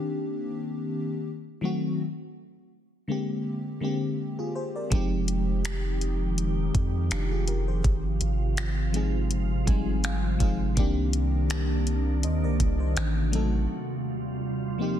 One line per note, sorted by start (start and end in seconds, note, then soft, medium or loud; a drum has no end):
0.00 1.28 D#3 loud
0.00 1.28 A#3 medium
0.00 1.28 C4 medium
0.00 1.28 D4 medium
0.00 1.28 G4 loud
1.61 1.99 D#3 medium
1.61 1.99 F#3 medium
1.61 1.99 A3 medium
1.61 2.00 C4 medium
1.65 2.01 F#4 medium
3.08 3.58 D3 medium
3.08 3.58 G#3 medium
3.08 3.59 A#3 medium
3.08 3.59 C4 medium
3.08 3.60 G4 medium
3.81 4.31 D3 medium
3.81 4.31 G#3 medium
3.81 4.32 A#3 medium
3.81 4.32 C4 medium
3.81 4.20 G4 medium
4.39 4.55 F4 medium
4.39 4.55 G#4 medium
4.55 4.74 G#4 medium
4.55 4.74 C5 medium
4.76 5.10 A#4 medium
4.76 5.10 D5 medium
4.90 6.71 F1 loud
4.90 7.82 D#3 medium
4.90 5.89 F3 loud
4.90 10.73 F3 medium
4.90 5.90 G#3 medium
4.90 5.90 C4 medium
4.90 5.91 D#4 medium
4.90 7.82 G4 medium
4.90 kick loud
4.90 closed hi-hat medium
4.94 5.91 G4 loud
5.28 closed hi-hat medium
5.65 finger snap loud
5.65 closed hi-hat medium
6.01 closed hi-hat medium
6.38 closed hi-hat medium
6.75 7.10 F2 loud
6.75 kick medium
6.75 closed hi-hat medium
7.11 7.82 F1 loud
7.11 7.31 D4 medium
7.11 7.30 F4 medium
7.11 finger snap loud
7.11 closed hi-hat medium
7.32 7.48 F4 medium
7.32 7.47 G#4 medium
7.48 7.67 G4 medium
7.48 7.67 A#4 medium
7.48 closed hi-hat medium
7.68 8.03 G#4 medium
7.68 8.03 C5 medium
7.84 8.20 G#1 loud
7.84 10.74 C3 medium
7.84 10.74 F4 medium
7.84 kick loud
7.84 closed hi-hat medium
8.21 9.33 G#1 loud
8.21 closed hi-hat medium
8.57 finger snap loud
8.57 closed hi-hat medium
8.92 9.43 F3 medium
8.92 9.43 G#3 medium
8.92 9.44 C4 medium
8.92 9.44 D#4 medium
8.92 9.45 G#4 medium
8.92 closed hi-hat medium
9.31 9.52 G1 loud
9.31 closed hi-hat medium
9.51 9.67 G#1 loud
9.66 10.38 G#1 loud
9.66 10.16 F3 medium
9.66 10.17 G#3 medium
9.66 10.17 C4 medium
9.66 10.18 D#4 medium
9.66 10.02 G#5 medium
9.66 kick medium
9.66 closed hi-hat medium
9.70 10.18 G3 medium
10.04 10.38 F5 medium
10.04 finger snap loud
10.04 closed hi-hat medium
10.39 10.76 G#1 medium
10.39 10.65 F3 medium
10.39 10.65 G#3 medium
10.39 10.66 C4 medium
10.39 10.67 D#4 medium
10.39 10.67 G#4 medium
10.39 10.75 F5 medium
10.39 kick medium
10.39 closed hi-hat medium
10.76 12.26 C2 loud
10.76 11.75 D#3 loud
10.76 12.94 D#3 medium
10.76 11.75 A#3 loud
10.76 12.94 A#3 medium
10.76 11.76 C4 loud
10.76 12.94 D4 medium
10.76 11.76 D4 loud
10.76 11.77 G4 loud
10.76 kick loud
10.76 closed hi-hat medium
11.13 closed hi-hat medium
11.50 finger snap loud
11.50 closed hi-hat medium
11.87 closed hi-hat medium
12.23 12.45 D#2 medium
12.23 12.43 C5 medium
12.23 12.43 D#5 medium
12.23 closed hi-hat medium
12.44 12.59 C2 medium
12.44 12.79 A#4 medium
12.44 12.78 D5 medium
12.60 12.95 C2 loud
12.60 kick medium
12.60 closed hi-hat medium
12.80 13.15 C5 medium
12.97 13.67 A1 loud
12.97 15.00 C3 medium
12.97 finger snap loud
12.97 closed hi-hat medium
13.31 13.69 F#3 medium
13.31 13.70 A3 medium
13.31 13.70 C4 medium
13.31 13.71 D#4 medium
13.31 13.71 A4 medium
13.31 closed hi-hat medium
13.70 15.00 D#2 medium
13.70 15.00 G3 medium
13.70 15.00 F4 medium
14.78 15.00 F3 medium
14.78 15.00 A#3 medium
14.78 15.00 C4 medium
14.78 15.00 D#4 medium
14.78 15.00 G4 medium